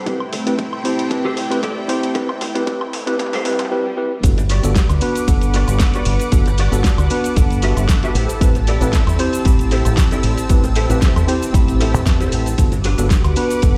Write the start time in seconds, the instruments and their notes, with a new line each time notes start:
Already playing: analog synth pad A3 C4 E4 G5, clean electric guitar G4 A4 C5
0.06 tine electric piano C4 E4 G4 B4, kick, closed hi-hat, mid tom
0.20 muted clean electric guitar stroke, high woodblock
0.33 muted clean electric guitar stroke, open hi-hat, mid tom
0.46 tine electric piano C4 E4 G4 B4, muted clean electric guitar stroke, closed hi-hat
0.59 muted clean electric guitar stroke, kick, closed hi-hat, mid tom
0.73 high woodblock
0.84 tine electric piano C4 E4 G4 C5, muted clean electric guitar stroke, open hi-hat, mid tom
0.99 closed hi-hat
1.10 tine electric piano C4 E4 G4 B4, kick, closed hi-hat, mid tom
1.25 clean electric guitar G4 A4 C5
1.37 open hi-hat, mid tom
1.50 tine electric piano C4 E4 G4 B4, muted clean electric guitar stroke, closed hi-hat, high woodblock
1.63 clean electric guitar G4 A4 D5, kick, closed hi-hat, mid tom
1.88 tine electric piano C4 E4 G4 C5, open hi-hat, mid tom
2.03 closed hi-hat
2.14 tine electric piano C4 E4 G4 B4, muted clean electric guitar stroke, kick, closed hi-hat, mid tom
2.29 muted clean electric guitar stroke, mid tom, high woodblock
2.41 muted clean electric guitar stroke, open hi-hat, mid tom
2.54 tine electric piano C4 E4 G4 B4, muted clean electric guitar stroke, closed hi-hat, mid tom
2.66 tine electric piano C4 E4 G4 B4, muted clean electric guitar stroke, kick, closed hi-hat, mid tom
2.81 mid tom, high woodblock
2.93 muted clean electric guitar stroke, open hi-hat, mid tom
3.06 tine electric piano C4 E4 G4 B4, closed hi-hat, mid tom
3.19 tine electric piano C4 E4 G4 B4, kick, closed hi-hat, mid tom, swell
3.26 mid tom
3.33 clean electric guitar G4 A4 C5, open hi-hat, mid tom
3.39 mid tom
3.45 tine electric piano C4 E4 G4 B4, open hi-hat, mid tom
3.52 mid tom
3.59 muted clean electric guitar stroke, closed hi-hat, mid tom, high woodblock
3.65 mid tom
3.71 tine electric piano C4 E4 G4 B4
3.97 tine electric piano C4 E4 G4 B4
4.23 fingered electric bass G1, tine electric piano B3 D4 F#4 A4, analog synth pad B4 F#5 D6, kick, closed hi-hat, cabasa, shaker
4.38 muted clean electric guitar stroke, closed hi-hat, cabasa
4.50 clean electric guitar F#4 G4 B4 D5, open hi-hat, shaker
4.63 fingered electric bass G1, tine electric piano B3 D4 F#4 A4, closed hi-hat, cabasa, shaker
4.75 kick, snare, closed hi-hat, cabasa, shaker
4.89 fingered electric bass D2, closed hi-hat, cabasa, high woodblock
5.01 tine electric piano B3 D4 F#4 B4, open hi-hat, shaker
5.15 closed hi-hat, cabasa, shaker
5.27 fingered electric bass G1, tine electric piano B3 D4 A4 F#5, kick, closed hi-hat, cabasa, shaker
5.41 closed hi-hat, cabasa
5.54 clean electric guitar F#4 G4 B4 D5, open hi-hat, shaker
5.68 fingered electric bass G1, closed hi-hat, cabasa, high woodblock, shaker
5.79 kick, snare, closed hi-hat, cabasa, shaker
5.94 clean electric guitar F#4 G4 B4 D5, closed hi-hat, cabasa
6.05 fingered electric bass G1, open hi-hat, shaker
6.20 closed hi-hat, cabasa, shaker
6.32 fingered electric bass G1, tine electric piano B3 D4 F#4 A4, analog synth pad A5, kick, closed hi-hat, cabasa, shaker
6.46 muted clean electric guitar stroke, closed hi-hat, cabasa
6.58 clean electric guitar F#4 G4 B4 D5, open hi-hat, shaker
6.72 fingered electric bass G1, tine electric piano B3 D4 F#4 A4, closed hi-hat, cabasa, shaker
6.84 kick, snare, closed hi-hat, cabasa, shaker
6.98 fingered electric bass D2, closed hi-hat, cabasa, high woodblock
7.10 tine electric piano B3 D4 F#4 B4, open hi-hat, shaker
7.24 closed hi-hat, cabasa, shaker
7.36 fingered electric bass G1, tine electric piano B3 D4 A4 F#5, kick, closed hi-hat, cabasa, shaker
7.50 closed hi-hat, cabasa
7.62 clean electric guitar F#4 G4 B4 E5, open hi-hat, shaker
7.77 fingered electric bass G1, closed hi-hat, cabasa, high woodblock, shaker
7.88 kick, snare, closed hi-hat, cabasa, shaker
8.03 clean electric guitar F#4 G4 B4 E5, closed hi-hat, cabasa
8.15 fingered electric bass A1, analog synth pad C4 E6, clean electric guitar E4 G4 A4 C5, open hi-hat, shaker
8.29 closed hi-hat, cabasa, shaker
8.41 fingered electric bass A1, tine electric piano C4 E4 G4 B4, kick, closed hi-hat, cabasa, shaker
8.55 muted clean electric guitar stroke, closed hi-hat, cabasa
8.67 clean electric guitar E4 G4 A4 D5, open hi-hat, shaker
8.81 fingered electric bass A1, tine electric piano C4 E4 G4 B4, closed hi-hat, cabasa, shaker
8.93 kick, snare, closed hi-hat, cabasa, shaker
9.07 fingered electric bass E2, closed hi-hat, cabasa, high woodblock
9.19 tine electric piano C4 E4 G4 C5, open hi-hat, shaker
9.33 closed hi-hat, cabasa, shaker
9.45 fingered electric bass A1, tine electric piano C4 E4 G4 B5, kick, closed hi-hat, cabasa, shaker
9.59 closed hi-hat, cabasa
9.71 clean electric guitar E4 G4 A4 C5, open hi-hat, shaker
9.85 fingered electric bass A1, closed hi-hat, cabasa, high woodblock, shaker
9.97 kick, snare, closed hi-hat, cabasa, shaker
10.11 clean electric guitar E4 G4 A4 D5, closed hi-hat, cabasa
10.23 fingered electric bass A1, open hi-hat, shaker
10.37 closed hi-hat, cabasa, shaker
10.49 fingered electric bass A1, tine electric piano C4 E4 G4 B4, kick, closed hi-hat, cabasa, shaker
10.64 muted clean electric guitar stroke, closed hi-hat, cabasa
10.76 clean electric guitar E4 G4 A4 C5, open hi-hat, shaker
10.90 fingered electric bass A1, tine electric piano C4 E4 G4 B4, closed hi-hat, cabasa, shaker
11.02 kick, snare, closed hi-hat, cabasa, shaker
11.16 fingered electric bass E2, closed hi-hat, cabasa, high woodblock
11.27 tine electric piano C4 E4 G4 C5, open hi-hat, shaker
11.42 closed hi-hat, cabasa, shaker
11.53 fingered electric bass A1, tine electric piano C4 E4 G4 B5, kick, closed hi-hat, cabasa, shaker
11.68 closed hi-hat, cabasa
11.80 clean electric guitar E4 G4 A4 C5, open hi-hat, shaker
11.94 fingered electric bass E2, closed hi-hat, cabasa, high woodblock, shaker
12.06 kick, snare, closed hi-hat, cabasa, shaker
12.20 clean electric guitar E4 G4 A4 C5, closed hi-hat, cabasa
12.32 fingered electric bass A1, open hi-hat, shaker
12.46 closed hi-hat, cabasa, shaker
12.58 fingered electric bass G1, tine electric piano B3 D4 F#4 A4, analog synth pad B4 F#5 D6, kick, closed hi-hat, cabasa, shaker
12.72 muted clean electric guitar stroke, closed hi-hat, cabasa
12.84 clean electric guitar D4 F#4 G4 B4, open hi-hat, shaker
12.98 fingered electric bass G1, tine electric piano B3 D4 F#4 A4, closed hi-hat, cabasa, shaker
13.10 kick, snare, closed hi-hat, cabasa, shaker
13.24 fingered electric bass D2, closed hi-hat, cabasa, high woodblock
13.36 tine electric piano B3 D4 F#4 B4, open hi-hat, shaker
13.50 closed hi-hat, cabasa, shaker
13.62 fingered electric bass G1, tine electric piano B3 D4 A4 F#5, kick, closed hi-hat, cabasa, shaker